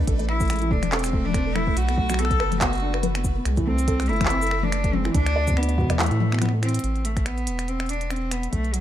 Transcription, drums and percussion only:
0.07 kick, closed hi-hat
0.19 closed hi-hat
0.29 finger snap
0.40 kick, closed hi-hat, cabasa
0.43 closed hi-hat
0.45 closed hi-hat
0.48 finger snap, closed hi-hat
0.50 closed hi-hat
0.53 closed hi-hat
0.56 closed hi-hat
0.59 closed hi-hat
0.62 closed hi-hat
0.71 kick
0.83 finger snap, closed hi-hat, high tom
0.92 clap, closed hi-hat
0.99 closed hi-hat
1.04 finger snap, closed hi-hat, cabasa
1.06 closed hi-hat
1.13 kick
1.25 high tom
1.27 high tom
1.30 high tom
1.32 finger snap, kick, closed hi-hat, high tom
1.56 finger snap, high tom
1.67 kick
1.77 closed hi-hat
1.89 finger snap, closed hi-hat
1.98 kick
2.10 finger snap, closed hi-hat, cabasa
2.14 finger snap
2.19 finger snap, closed hi-hat
2.25 finger snap
2.31 kick, closed hi-hat
2.40 finger snap
2.52 closed hi-hat, high tom
2.61 finger snap, kick, clap, closed hi-hat
2.73 closed hi-hat
2.75 closed hi-hat
2.94 finger snap
3.03 closed hi-hat, high tom
3.15 finger snap, closed hi-hat
3.24 kick, cabasa
3.45 finger snap, closed hi-hat
3.57 kick, closed hi-hat
3.79 closed hi-hat, cabasa
3.88 kick, closed hi-hat
4.00 finger snap, closed hi-hat
4.02 closed hi-hat
4.06 closed hi-hat
4.09 closed hi-hat
4.13 closed hi-hat
4.16 closed hi-hat
4.21 finger snap, kick, closed hi-hat, high tom
4.25 clap
4.30 closed hi-hat
4.42 cabasa
4.47 closed hi-hat
4.51 finger snap
4.63 high tom
4.72 finger snap, closed hi-hat
4.84 kick, closed hi-hat
4.93 high tom
5.05 finger snap
5.15 kick, closed hi-hat
5.26 finger snap, closed hi-hat
5.48 kick, closed hi-hat, cabasa
5.50 kick
5.54 finger snap, kick
5.63 closed hi-hat
5.69 closed hi-hat
5.78 kick
5.81 kick
5.84 kick
5.87 kick
5.90 finger snap, kick, closed hi-hat, high tom
5.92 kick
5.94 kick, high tom
5.97 kick, clap, closed hi-hat, high tom
6.03 closed hi-hat, high tom
6.06 closed hi-hat
6.11 closed hi-hat
6.20 high tom
6.32 finger snap
6.34 finger snap
6.39 finger snap
6.42 finger snap, closed hi-hat, high tom
6.46 finger snap
6.49 finger snap
6.63 finger snap, closed hi-hat
6.69 closed hi-hat
6.74 closed hi-hat
6.79 closed hi-hat
6.84 closed hi-hat
6.96 closed hi-hat
7.05 closed hi-hat
7.17 finger snap, kick, closed hi-hat
7.26 finger snap, closed hi-hat
7.38 closed hi-hat
7.47 closed hi-hat
7.59 finger snap, closed hi-hat
7.68 closed hi-hat
7.80 finger snap, closed hi-hat
7.86 closed hi-hat
7.89 closed hi-hat
7.93 closed hi-hat
8.01 closed hi-hat
8.10 finger snap, closed hi-hat
8.16 closed hi-hat
8.31 finger snap, closed hi-hat
8.43 closed hi-hat
8.53 kick, closed hi-hat
8.65 closed hi-hat
8.74 closed hi-hat

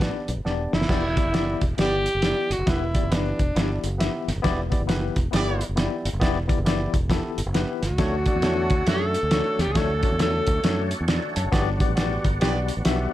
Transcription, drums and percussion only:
0.00 kick, snare, closed hi-hat
0.28 closed hi-hat
0.46 snare
0.73 snare
0.81 snare
0.89 kick, snare, crash
1.17 kick, closed hi-hat
1.34 snare, closed hi-hat
1.61 kick, closed hi-hat
1.78 snare, closed hi-hat
2.06 closed hi-hat
2.22 snare, closed hi-hat
2.51 closed hi-hat
2.67 kick, snare, closed hi-hat
2.95 kick, closed hi-hat
3.12 snare, closed hi-hat
3.39 kick, closed hi-hat
3.56 snare, closed hi-hat
3.84 closed hi-hat
4.00 snare, closed hi-hat
4.28 snare, closed hi-hat
4.44 kick, snare, closed hi-hat
4.72 kick, closed hi-hat
4.89 snare, closed hi-hat
5.16 kick, closed hi-hat
5.33 snare, closed hi-hat
5.61 closed hi-hat
5.77 snare, closed hi-hat
6.05 closed hi-hat
6.21 kick, snare, closed hi-hat
6.49 kick, closed hi-hat
6.66 snare, closed hi-hat
6.94 kick, closed hi-hat
7.10 kick, snare, closed hi-hat
7.38 closed hi-hat
7.54 snare, closed hi-hat
7.82 snare, closed hi-hat
7.98 kick, snare, closed hi-hat
8.26 kick, closed hi-hat
8.42 snare, closed hi-hat
8.70 kick, closed hi-hat
8.87 snare, closed hi-hat
9.14 closed hi-hat
9.31 snare, closed hi-hat
9.59 snare, closed hi-hat
9.75 kick, snare, closed hi-hat
10.03 kick, closed hi-hat
10.19 snare, closed hi-hat
10.47 kick, closed hi-hat
10.64 snare, closed hi-hat
10.91 closed hi-hat
11.08 snare, closed hi-hat
11.36 closed hi-hat
11.53 kick, snare, closed hi-hat
11.80 kick, closed hi-hat
11.97 snare, closed hi-hat
12.24 kick, closed hi-hat
12.41 snare, closed hi-hat
12.68 closed hi-hat
12.85 snare, closed hi-hat

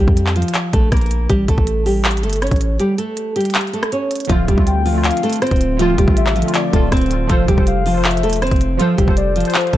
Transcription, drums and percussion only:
0.08 kick
0.17 closed hi-hat
0.26 clap
0.36 closed hi-hat
0.42 closed hi-hat
0.48 closed hi-hat
0.54 clap, closed hi-hat
0.73 kick, closed hi-hat
0.92 kick, cross-stick, closed hi-hat
0.97 closed hi-hat
1.01 closed hi-hat
1.06 closed hi-hat
1.11 closed hi-hat
1.30 kick, closed hi-hat
1.48 kick, closed hi-hat
1.58 kick
1.67 closed hi-hat
1.86 open hi-hat
2.05 clap, closed hi-hat
2.11 closed hi-hat
2.17 closed hi-hat
2.23 closed hi-hat
2.30 closed hi-hat
2.33 closed hi-hat
2.36 closed hi-hat
2.42 cross-stick, closed hi-hat
2.47 closed hi-hat
2.51 kick, closed hi-hat
2.56 closed hi-hat
2.61 closed hi-hat
2.80 closed hi-hat
2.98 closed hi-hat
3.17 closed hi-hat
3.36 closed hi-hat, open hi-hat
3.41 closed hi-hat
3.45 closed hi-hat
3.50 closed hi-hat
3.55 clap, closed hi-hat
3.61 closed hi-hat
3.67 closed hi-hat
3.73 closed hi-hat
3.83 cross-stick, closed hi-hat
3.92 closed hi-hat
4.11 closed hi-hat
4.16 closed hi-hat
4.20 closed hi-hat
4.25 closed hi-hat
4.30 kick, closed hi-hat
4.48 kick, closed hi-hat
4.58 kick
4.67 closed hi-hat
4.86 open hi-hat
5.04 clap, closed hi-hat
5.11 closed hi-hat
5.17 closed hi-hat
5.23 closed hi-hat
5.30 closed hi-hat
5.33 closed hi-hat
5.36 closed hi-hat
5.42 cross-stick, closed hi-hat
5.47 closed hi-hat
5.51 kick, closed hi-hat
5.56 closed hi-hat
5.61 closed hi-hat
5.79 closed hi-hat
5.98 kick, closed hi-hat
6.08 kick
6.17 closed hi-hat
6.26 clap
6.36 closed hi-hat
6.42 closed hi-hat
6.48 closed hi-hat
6.54 clap, closed hi-hat
6.73 kick, closed hi-hat
6.92 kick, cross-stick, closed hi-hat
6.97 closed hi-hat
7.02 closed hi-hat
7.06 closed hi-hat
7.11 closed hi-hat
7.29 kick, closed hi-hat
7.48 kick, closed hi-hat
7.58 kick
7.67 closed hi-hat
7.86 open hi-hat
8.05 clap, closed hi-hat
8.11 closed hi-hat
8.17 closed hi-hat
8.23 closed hi-hat
8.30 closed hi-hat
8.33 closed hi-hat
8.36 closed hi-hat
8.42 cross-stick, closed hi-hat
8.47 closed hi-hat
8.51 kick, closed hi-hat
8.56 closed hi-hat
8.61 closed hi-hat
8.80 closed hi-hat
8.98 kick, closed hi-hat
9.08 kick
9.17 closed hi-hat
9.36 closed hi-hat, open hi-hat
9.40 closed hi-hat
9.45 closed hi-hat
9.50 closed hi-hat
9.54 clap, closed hi-hat
9.61 closed hi-hat
9.67 closed hi-hat
9.73 kick, closed hi-hat

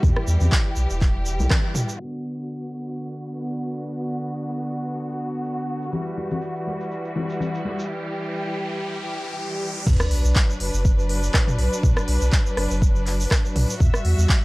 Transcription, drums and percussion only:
0.03 kick, mid tom, low conga, shaker
0.16 cross-stick
0.27 high conga, shaker
0.40 low conga, shaker
0.52 kick, clap, shaker
0.76 shaker
0.90 shaker
1.01 kick, clap, high conga, shaker
1.26 shaker
1.40 high conga, shaker
1.50 kick, cross-stick, clap, low conga, shaker
1.75 mid tom, high conga, shaker
1.89 shaker
2.87 shaker
2.98 shaker
3.36 shaker
3.48 shaker
3.60 shaker
3.85 shaker
3.96 shaker
4.10 shaker
4.34 shaker
4.46 shaker
4.60 shaker
4.83 shaker
4.96 shaker
5.09 shaker
5.34 shaker
5.44 shaker
5.58 shaker
5.82 shaker
5.92 low conga, shaker
6.06 shaker
6.18 high conga
6.31 low conga, shaker
6.42 shaker
6.55 shaker
6.67 high conga
6.81 shaker
6.91 shaker
7.04 shaker
7.16 high conga, low conga
7.30 shaker
7.41 low conga, shaker
7.55 shaker
7.65 high conga
7.79 shaker
9.87 kick, mid tom, crash, shaker
10.00 cross-stick, shaker
10.11 open hi-hat
10.25 shaker
10.35 kick, clap, shaker
10.50 shaker
10.60 open hi-hat
10.74 shaker
10.85 kick, shaker
10.99 shaker
11.09 open hi-hat
11.23 shaker
11.34 kick, cross-stick, clap, mid tom, shaker
11.47 mid tom, shaker
11.59 open hi-hat
11.73 shaker
11.83 kick, mid tom, shaker
11.97 cross-stick, shaker
12.08 open hi-hat
12.21 shaker
12.32 kick, clap, shaker
12.46 shaker
12.57 cross-stick, open hi-hat
12.71 shaker
12.82 kick, shaker
12.96 shaker
13.07 clap, open hi-hat
13.20 open hi-hat, shaker
13.31 kick, cross-stick, clap, shaker
13.45 shaker
13.56 mid tom, open hi-hat
13.70 shaker
13.80 kick, mid tom, shaker
13.94 cross-stick, shaker
14.05 open hi-hat
14.19 shaker
14.29 kick, clap, shaker

